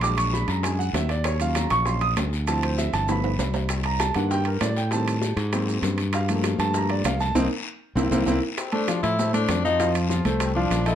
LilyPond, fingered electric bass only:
\new Staff \with { instrumentName = "Fingered electric bass" } { \clef bass \time 4/4 \key c \dorian \tempo 4 = 197 bes,,4. fis,4. ees,4~ | ees,4. bes,,4. d,4~ | d,4. g,,4. c,4~ | c,4. g,4. a,4~ |
a,4. aes,4. g,4~ | g,4. g,4. c,4 | c,8 r4. c,8 c,8 c,8 r8 | \key f \major r4. a,4. f,4~ |
f,4. c,4. bes,,4 | }